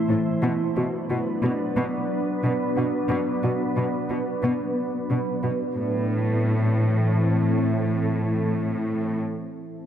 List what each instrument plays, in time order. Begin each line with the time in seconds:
Already playing: ambient pad E3 A3 E4 C5
0.10 cello section A2, synth arpeggio sound E4
0.43 cello section B2, ambient pad F#3 B3 D4 B4, synth arpeggio sound B3
0.77 cello section B2, synth arpeggio sound F#4
1.10 cello section B2, synth arpeggio sound F#4
1.43 cello section B2, synth arpeggio sound F#4
1.77 cello section B2, synth arpeggio sound B3
2.44 cello section B2, synth arpeggio sound D4
2.77 cello section B2, synth arpeggio sound F#4
3.10 cello section B2, synth arpeggio sound B3
3.43 cello section B2, synth arpeggio sound F#4
3.77 cello section B2, synth arpeggio sound F#4
4.10 cello section B2, synth arpeggio sound F#4
4.43 cello section B2, synth arpeggio sound B3
5.10 cello section B2, synth arpeggio sound D4
5.43 cello section B2, synth arpeggio sound F#4
5.77 cello section A2, ambient pad E3 C4 E4 A4